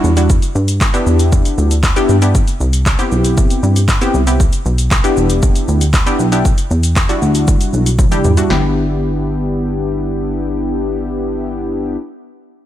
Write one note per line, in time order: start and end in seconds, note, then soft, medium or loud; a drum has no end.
0.00 0.11 G3 loud
0.00 0.11 D4 medium
0.00 0.11 E4 medium
0.00 0.11 F#4 loud
0.04 0.39 E2 medium
0.04 shaker medium
0.17 0.30 G3 medium
0.17 0.30 D4 medium
0.17 0.30 E4 medium
0.17 0.30 F#4 medium
0.17 closed hi-hat medium
0.17 shaker medium
0.30 kick loud
0.30 shaker medium
0.42 closed hi-hat soft
0.42 shaker medium
0.55 0.90 G2 loud
0.55 shaker soft
0.68 closed hi-hat medium
0.68 shaker medium
0.81 kick loud
0.81 clap loud
0.81 shaker medium
0.94 1.74 B3 medium
0.94 1.74 D4 medium
0.94 1.74 E4 medium
0.94 1.74 G4 loud
0.94 closed hi-hat soft
0.94 shaker medium
1.07 1.41 E2 medium
1.07 shaker medium
1.19 closed hi-hat medium
1.19 shaker medium
1.32 kick loud
1.32 shaker medium
1.45 closed hi-hat medium
1.45 shaker medium
1.58 1.93 D2 loud
1.58 shaker medium
1.71 closed hi-hat medium
1.71 shaker medium
1.83 kick loud
1.83 clap loud
1.83 shaker medium
1.96 2.16 B3 loud
1.96 2.16 D4 medium
1.96 2.17 E4 medium
1.96 2.17 G4 loud
1.96 closed hi-hat medium
1.96 shaker medium
2.09 2.44 G2 medium
2.09 shaker medium
2.22 2.35 B3 medium
2.22 2.35 D4 medium
2.22 2.35 E4 medium
2.22 2.35 G4 medium
2.22 closed hi-hat medium
2.22 shaker medium
2.35 kick loud
2.35 shaker medium
2.48 closed hi-hat medium
2.48 shaker medium
2.60 2.95 C2 loud
2.60 shaker soft
2.73 closed hi-hat medium
2.73 shaker medium
2.86 kick loud
2.86 clap loud
2.86 shaker medium
2.99 3.79 B3 medium
2.99 3.79 C4 medium
2.99 3.79 E4 medium
2.99 3.79 G4 loud
2.99 closed hi-hat medium
2.99 shaker soft
3.12 3.46 B1 medium
3.12 shaker medium
3.25 closed hi-hat medium
3.25 shaker medium
3.37 kick loud
3.37 shaker medium
3.50 closed hi-hat medium
3.50 shaker medium
3.63 3.98 G2 loud
3.63 shaker medium
3.76 closed hi-hat medium
3.76 shaker medium
3.88 kick loud
3.88 clap loud
3.88 shaker medium
4.01 4.21 B3 loud
4.01 4.22 C4 medium
4.01 4.22 E4 medium
4.01 4.22 G4 loud
4.01 closed hi-hat medium
4.01 shaker medium
4.14 4.49 C2 medium
4.14 shaker medium
4.27 4.40 B3 medium
4.27 4.40 C4 medium
4.27 4.40 E4 medium
4.27 4.40 G4 medium
4.27 closed hi-hat medium
4.27 shaker medium
4.40 kick loud
4.40 shaker medium
4.53 closed hi-hat medium
4.53 shaker medium
4.66 5.00 B1 loud
4.66 shaker medium
4.78 closed hi-hat medium
4.78 shaker medium
4.91 kick loud
4.91 clap loud
4.91 shaker medium
5.04 5.84 B3 medium
5.04 5.84 D4 medium
5.04 5.84 E4 medium
5.04 5.85 G4 loud
5.04 closed hi-hat medium
5.04 shaker medium
5.17 5.52 E1 medium
5.17 shaker medium
5.30 closed hi-hat medium
5.30 shaker medium
5.42 kick loud
5.42 shaker medium
5.56 closed hi-hat medium
5.56 shaker medium
5.68 6.03 D2 loud
5.68 shaker medium
5.81 closed hi-hat medium
5.81 shaker medium
5.94 kick loud
5.94 clap loud
5.94 shaker medium
6.06 6.27 B3 loud
6.06 6.27 D4 medium
6.06 6.27 E4 medium
6.06 6.27 G4 loud
6.06 closed hi-hat medium
6.06 shaker medium
6.19 6.54 B1 medium
6.19 shaker medium
6.32 6.45 B3 medium
6.32 6.45 D4 medium
6.32 6.45 E4 medium
6.32 6.45 G4 loud
6.32 closed hi-hat medium
6.32 shaker medium
6.45 kick loud
6.45 shaker medium
6.58 closed hi-hat medium
6.58 shaker medium
6.71 7.05 E2 medium
6.71 shaker soft
6.83 closed hi-hat medium
6.83 shaker medium
6.96 kick loud
6.96 clap loud
6.96 shaker medium
7.09 7.89 G3 medium
7.09 7.89 D4 medium
7.09 7.90 E4 medium
7.09 7.90 F#4 loud
7.09 closed hi-hat medium
7.09 shaker medium
7.22 7.57 D2 medium
7.22 shaker medium
7.35 closed hi-hat medium
7.35 shaker medium
7.47 kick loud
7.47 shaker medium
7.61 closed hi-hat medium
7.61 shaker medium
7.73 8.08 B1 loud
7.73 shaker medium
7.86 closed hi-hat medium
7.86 shaker medium
7.99 kick loud
7.99 high tom medium
7.99 shaker medium
8.12 8.32 G3 loud
8.12 8.32 D4 medium
8.12 8.32 E4 medium
8.12 8.32 G4 loud
8.12 closed hi-hat medium
8.12 mid tom medium
8.12 shaker medium
8.24 8.42 E2 medium
8.24 mid tom medium
8.24 shaker medium
8.37 8.50 G3 medium
8.37 8.49 D4 medium
8.37 8.49 E4 medium
8.37 8.50 F#4 medium
8.37 closed hi-hat medium
8.37 floor tom medium
8.37 shaker medium
8.50 11.97 G1 medium
8.50 11.97 B3 medium
8.50 11.97 D4 medium
8.50 11.97 E4 medium
8.50 11.97 G4 medium
8.50 snare loud